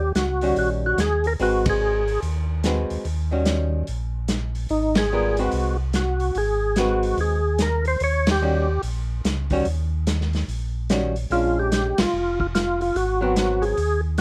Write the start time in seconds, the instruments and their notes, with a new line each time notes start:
Already playing: tonewheel organ D#2 G4
0.15 tonewheel organ C#2 F#4, snare, closed hi-hat
0.41 hollow-body jazz guitar D#3 G3 C#4 F#4, open hi-hat
0.56 tonewheel organ A#1 F#4, open hi-hat
0.86 tonewheel organ F#4
0.98 tonewheel organ D#2 G#4, snare, closed hi-hat
1.24 tonewheel organ A#4, open hi-hat
1.39 tonewheel organ G#1 F#4, hollow-body jazz guitar G#3 C4 F#4 B4, open hi-hat
1.66 kick, ride
1.70 tonewheel organ G#4
2.07 open hi-hat
2.22 tonewheel organ D#2, open hi-hat
2.64 hollow-body jazz guitar G#3 C4 F#4 B4, snare, closed hi-hat
2.90 tonewheel organ D#2, open hi-hat
3.05 tonewheel organ D#2, open hi-hat
3.31 hollow-body jazz guitar D#3 G3 C#4 F#4
3.46 snare, closed hi-hat
3.87 tonewheel organ A#1, open hi-hat
4.28 snare, closed hi-hat
4.55 open hi-hat
4.69 tonewheel organ G#1 D#4, open hi-hat
4.95 tonewheel organ G#4, snare, ride
5.12 hollow-body jazz guitar G3 B3 F4 A#4
5.37 hollow-body jazz guitar G#3 C4 F#4 B4, tonewheel organ F#4, open hi-hat
5.51 tonewheel organ C2, open hi-hat
5.93 tonewheel organ F#4, snare, closed hi-hat
6.20 open hi-hat
6.35 tonewheel organ G#1 G#4, open hi-hat
6.76 hollow-body jazz guitar G#3 C4 F#4 B4, tonewheel organ F#4, snare, closed hi-hat
7.03 open hi-hat
7.17 tonewheel organ D#2 G#4, open hi-hat
7.59 tonewheel organ A#4, snare, closed hi-hat
7.85 tonewheel organ C5, open hi-hat
8.00 tonewheel organ D#2 C#5, open hi-hat
8.27 snare, ride
8.31 tonewheel organ G4
8.42 hollow-body jazz guitar D#3 G3 C#4 F#4
8.83 tonewheel organ A#1, open hi-hat
9.24 tonewheel organ C#2, snare, closed hi-hat
9.50 hollow-body jazz guitar D#3 G3 C#4 F#4, kick, open hi-hat
9.65 tonewheel organ D#2, open hi-hat
10.07 snare, closed hi-hat
10.21 snare
10.33 snare, open hi-hat
10.48 tonewheel organ A#1, open hi-hat
10.90 hollow-body jazz guitar D#3 G3 C#4 F#4, snare, closed hi-hat
11.16 open hi-hat
11.30 tonewheel organ A#1 F4, hollow-body jazz guitar G#3 C#4 D4, open hi-hat
11.59 tonewheel organ G4
11.72 tonewheel organ G4, snare, closed hi-hat
11.98 tonewheel organ A#1 F4, snare, ride
12.13 tonewheel organ F1
12.40 tonewheel organ F4, kick
12.55 tonewheel organ F4, snare, closed hi-hat
12.81 tonewheel organ F4, open hi-hat
12.95 tonewheel organ G#1 F#4, open hi-hat
13.21 hollow-body jazz guitar F#3 B3 C4, tonewheel organ F#4
13.36 snare, closed hi-hat
13.62 tonewheel organ G#4, open hi-hat
13.77 tonewheel organ D#2, open hi-hat
14.18 closed hi-hat